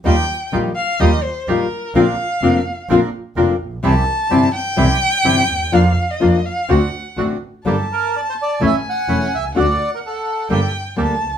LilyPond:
<<
  \new Staff \with { instrumentName = "Violin" } { \time 4/4 \key bes \major \tempo 4 = 127 g''4 r8 f''8 ees''8 c''8 bes'4 | f''2 r2 | a''4. g''2~ g''8 | f''8. ees''8. f''8 fis''4 r4 |
\key g \minor a''2 aes''2 | fis''2 g''4 a''4 | }
  \new Staff \with { instrumentName = "Bandoneon" } { \time 4/4 \key bes \major r1 | r1 | r1 | r1 |
\key g \minor r8 bes'8 d''16 c''16 d''8 e''8 fis''4 e''8 | d''8. bes'16 a'4 r2 | }
  \new Staff \with { instrumentName = "Bandoneon" } { \time 4/4 \key bes \major <ees' f' g'>8 r8 <ees' f' g'>8 r8 <ees' f' g'>8 r8 <ees' f' g'>8 r8 | <c' d' bes'>8 r8 <c' d' bes'>8 r8 <c' d' bes'>8 r8 <c' d' bes'>8 r8 | <c' e' g'>8 r8 <c' e' g'>8 r8 <c' e' g'>8 r8 <c' e' g'>8 r8 | <bes d' f'>8 r8 <bes d' f'>8 r8 <c' d' fis'>8 r8 <c' d' fis'>8 r8 |
\key g \minor <bes g' a'>8 r4. <cis' e' a'>8 r8 <cis' e' a'>8 r8 | <d' fis' a'>8 r4. <bes g' a'>8 r8 <bes g' a'>8 r8 | }
  \new Staff \with { instrumentName = "Nylon-string guitar" } { \time 4/4 \key bes \major <ees g ees' f'>8 r8 <ees g ees' f'>8 r8 <ees g ees' f'>8 r8 <ees g ees' f'>8 r8 | <d bes c' f'>8 r8 <d bes c' f'>8 r8 <d bes c' f'>8 r8 <d bes c' f'>8 r8 | <c e g c' e'>8 r8 <c e g c' e'>8 r8 <c e g c' e'>8 r8 <c e g c' e'>8 r8 | <f bes d' f'>8 r8 <f bes d' f'>8 r8 <d a c' fis'>8 r8 <d a c' fis'>8 r8 |
\key g \minor <d g bes d' a'>8 r4. <e a cis' e'>8 r8 <e a cis' e'>8 r8 | <d a d' fis'>8 r4. <d g bes d' a'>8 r8 <d g bes d' a'>8 r8 | }
  \new Staff \with { instrumentName = "Double bass" } { \clef bass \time 4/4 \key bes \major ees,8 r8 bes,,8 r8 ees,8 r8 bes,,8 r8 | bes,,8 r8 f,,8 r8 bes,,8 r8 f,,8 bes,,8 | c,8 r8 g,,8 r8 c,8 r8 g,,8 ees,8 | f,8 r8 f,8 r8 d,8 r8 a,,8 r8 |
\key g \minor g,,8 r4. a,,8 r8 e,,8 c,8 | d,8 r4. g,,8 r8 d,8 cis,8 | }
>>